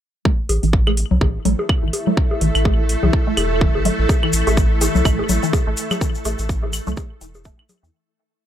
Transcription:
0.25 synth pluck A3, synth drone A3 A4, ambient pad E4, kick
0.49 analog synth bass A1, ambient pad E5, open hi-hat, low bongo
0.63 analog synth bass A1, synth pluck E3, open hi-hat
0.68 ambient pad A4
0.73 kick
0.87 synth pluck A3, low bongo, claves
0.97 open hi-hat
1.11 analog synth bass C2, low conga
1.21 analog synth bass A1, synth pluck E3, kick, low bongo
1.45 analog synth bass A1, synth pluck A3, open hi-hat, low conga
1.59 low bongo
1.69 kick, claves
1.83 analog synth bass A1, synth pluck E3
1.93 open hi-hat, low bongo
2.07 synth pluck A3, low conga
2.17 kick
2.31 low bongo
2.41 analog synth bass A1, synth pluck E3, open hi-hat
2.55 analog synth bass A1, open hi-hat, claves
2.65 synth pluck A3, kick, low bongo
2.89 open hi-hat
3.03 analog synth bass C2, synth pluck E3, low bongo, low conga
3.13 kick
3.27 synth pluck A3
3.37 analog synth bass E1, open hi-hat, low bongo, claves
3.61 synth pluck E3, kick
3.75 analog synth bass G1, low bongo
3.85 synth pluck A3, open hi-hat, low conga
3.99 analog synth bass A1
4.09 kick, low bongo, shaker
4.23 synth pluck E3, claves
4.33 analog synth bass A1, open hi-hat, shaker
4.47 analog synth bass A1, synth pluck A3, open hi-hat, low bongo, shaker
4.57 kick, shaker
4.81 synth pluck E3, open hi-hat, low bongo, shaker
4.95 analog synth bass C2, low conga, shaker
5.05 analog synth bass A1, synth pluck A3, kick, claves, shaker
5.19 low bongo
5.29 analog synth bass A1, open hi-hat, low conga, shaker
5.43 synth pluck E3, shaker
5.53 kick, low bongo, shaker
5.67 analog synth bass A1, synth pluck A3
5.77 open hi-hat, shaker
5.91 low bongo, low conga, claves, shaker
6.01 synth pluck E3, kick, shaker
6.15 shaker
6.25 analog synth bass A1, synth pluck A3, open hi-hat, low bongo, shaker
6.38 analog synth bass A1, open hi-hat, shaker
6.49 kick, shaker
6.63 synth pluck E3, low bongo
6.73 open hi-hat, claves, shaker
6.87 analog synth bass C2, synth pluck A3, low conga, shaker
6.97 kick, low bongo, shaker
7.21 analog synth bass E1, synth pluck E3, open hi-hat, shaker
7.35 low bongo, shaker
7.45 synth pluck A3, kick, shaker
7.59 claves
7.69 open hi-hat, low bongo, low conga, shaker
7.83 analog synth bass E2, synth pluck E3, shaker

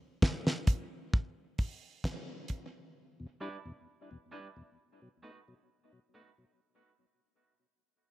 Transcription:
0.22 kick, snare
0.47 snare
0.67 kick, closed hi-hat
1.14 kick
1.58 kick, open hi-hat
2.04 kick, snare, hi-hat pedal
2.48 kick, closed hi-hat
3.20 tonewheel organ E2 B2
3.40 tonewheel organ G3 D4 E4, clean electric guitar G3 D4 E4 B4
3.65 tonewheel organ E2 B2
4.11 tonewheel organ E2 B2
4.31 clean electric guitar G3 D4 E4 B4, tonewheel organ G3 D4 E4
4.57 tonewheel organ E2 B2
5.02 tonewheel organ B2 F#3
5.23 clean electric guitar A3 D#4 F#4 B4, tonewheel organ A3 B3 D#4
5.48 tonewheel organ B2 F#3
5.93 tonewheel organ B2 F#3
6.14 clean electric guitar A3 D#4 F#4 B4, tonewheel organ A3 B3 D#4
6.38 tonewheel organ B2 F#3

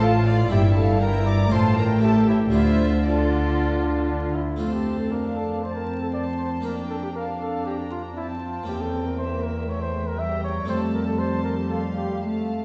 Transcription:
Already playing: double bass section A1, cello section A2, harpsichord A2 A3 C4 F4
0.00 viola section F4, trumpet A4, violin section F5 A5
0.26 trumpet F4, violin section D5 F5
0.46 harpsichord A#3 D4 E4
0.51 double bass section G1, cello section G2, harpsichord G2, viola section E4, trumpet G4, violin section E5 G5
0.76 trumpet A4, violin section F5 A5
1.01 viola section E4, trumpet A#4, violin section G5 A#5
1.26 trumpet D5, violin section A#5 D6
1.48 double bass section A1, cello section A2, harpsichord A3 D4 F4, viola section F4, violin section A5
1.52 harpsichord A2, trumpet C5, violin section C6
1.77 trumpet A#4, violin section G5 A#5
1.99 harpsichord A3 C#4 G4, viola section G4, violin section E5
2.03 trumpet A4, violin section A5
2.28 trumpet E4, violin section C#5 E5
2.50 harpsichord A3 D4 F4, trumpet E4, violin section C5 E5
2.54 double bass section D2, cello section D3, harpsichord D3, viola section F4
3.05 trumpet D4, viola section F4, violin section A4 D5
4.09 trumpet D4
4.35 trumpet E4
4.56 harpsichord A3 C4 F4, trumpet F4
4.61 cello section F2, harpsichord F2, viola section C4, violin section A5 C6
4.73 trumpet G4
5.00 trumpet A4
5.12 viola section D4, trumpet A#4, violin section F5 A5
5.37 trumpet A4
5.63 viola section C4, trumpet C5, violin section A5
5.76 trumpet A#4
6.01 trumpet A4
6.14 trumpet D5, violin section A5 C6
6.39 trumpet C5
6.60 harpsichord A#3 D4 G4, viola section D4, trumpet A#4
6.64 violin section G5 A#5
6.90 trumpet A4
7.03 trumpet G4
7.15 viola section D4, trumpet A#4, violin section F5 A5
7.41 trumpet A4
7.66 trumpet G4, violin section G5 A#5
7.91 trumpet F4
8.17 viola section C4, trumpet E4, violin section G5 A5
8.43 trumpet F4
8.63 harpsichord A#3 C#4 G4
8.67 cello section E2, harpsichord E2, trumpet G4, violin section G5
8.81 trumpet A4
9.06 trumpet A#4
9.18 viola section A#3, trumpet C5, violin section E5 G5
9.44 trumpet A#4
9.68 viola section A3, trumpet C#5, violin section E5
9.81 trumpet C5
10.07 trumpet A#4
10.19 viola section G3, trumpet E5, violin section G5 A#5
10.44 trumpet C#5
10.65 harpsichord A3 C4 A4
10.69 cello section F2, harpsichord F2, trumpet C5, violin section A5
10.94 trumpet A#4
11.07 trumpet A4
11.19 trumpet C5, violin section A5 C6
11.44 trumpet A#4
11.70 trumpet A4, violin section F5 C6
11.96 trumpet G4
12.21 viola section A3, violin section F5 A5

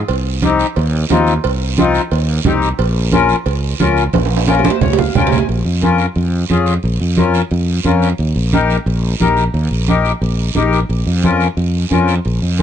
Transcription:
0.08 fretless electric bass C2, cowbell, high conga, long guiro
0.42 accordion C4 D#4 G4, cowbell, high conga, short guiro
0.59 short guiro
0.76 fretless electric bass D#2, cowbell, high conga, long guiro
1.10 fretless electric bass D#2, accordion C4 D#4 F4, cowbell, high conga, low timbale, short guiro
1.27 short guiro
1.44 fretless electric bass C2, cowbell, high conga, long guiro
1.78 accordion C4 D#4 F4, cowbell, high conga, short guiro
1.94 short guiro
2.11 fretless electric bass D#2, cowbell, high conga, long guiro
2.45 fretless electric bass C2, accordion C4 D#4 G4, cowbell, high conga, low conga, low timbale, short guiro
2.62 short guiro
2.79 fretless electric bass A#1, cowbell, high conga, long guiro
3.12 accordion C#4 F4 A#4, cowbell, high conga, short guiro
3.29 short guiro
3.46 fretless electric bass C#2, cowbell, high conga, long guiro
3.80 fretless electric bass C#2, accordion C#4 F4 A#4, cowbell, high conga, low timbale, short guiro
3.97 short guiro
4.13 fretless electric bass A#1, cowbell, high conga, high timbale, long guiro
4.25 high timbale
4.37 high timbale
4.47 accordion C#4 F4 A#4, cowbell, high conga, high timbale, short guiro
4.59 low timbale
4.64 accordion C5, high conga, short guiro
4.70 low timbale
4.81 fretless electric bass C#2, accordion C#5, cowbell, low conga, low timbale, long guiro
4.93 low timbale
4.98 accordion F5, low conga
5.15 fretless electric bass C#2, accordion C#4 F4 A#4 G5, cowbell, low conga, low timbale, short guiro
5.27 low timbale
5.32 accordion G#5, low conga, short guiro
5.38 low timbale
5.49 fretless electric bass A#1, high conga, long guiro
5.65 fretless electric bass F2
5.82 accordion C#4 F4 A#4, high conga, short guiro
5.98 short guiro
6.16 fretless electric bass F2, high conga, long guiro
6.49 fretless electric bass F2, accordion C#4 F4 G#4, high conga, short guiro
6.66 short guiro
6.83 fretless electric bass A#1, high conga, long guiro
7.00 fretless electric bass F2
7.17 accordion C#4 F4 A#4, high conga, short guiro
7.34 short guiro
7.51 fretless electric bass F2, high conga, long guiro
7.84 fretless electric bass F2, accordion C#4 F4 A#4, high conga, short guiro
8.02 short guiro
8.18 fretless electric bass D#2, high conga, long guiro
8.36 fretless electric bass A#1
8.53 accordion D#4 G4 A#4, high conga, short guiro
8.70 short guiro
8.86 fretless electric bass A#1, high conga, long guiro
9.20 fretless electric bass A#1, accordion D#4 G4 A#4, high conga, short guiro
9.37 short guiro
9.54 fretless electric bass D#2, high conga, long guiro
9.71 fretless electric bass A#1
9.88 accordion D#4 G4 A#4, high conga, short guiro
10.05 short guiro
10.21 fretless electric bass A#1, high conga, long guiro
10.55 fretless electric bass A#1, accordion D#4 G4 A#4, high conga, short guiro
10.73 short guiro
10.89 fretless electric bass A#1, high conga, long guiro
11.07 fretless electric bass F2
11.24 accordion C#4 F4 A#4, high conga, short guiro
11.40 short guiro
11.57 fretless electric bass F2, high conga, long guiro
11.90 fretless electric bass F2, accordion C#4 F4 A#4, high conga, short guiro
12.08 short guiro
12.25 fretless electric bass A#1, high conga, long guiro
12.42 fretless electric bass F2
12.59 accordion C#4 F4, high conga, short guiro

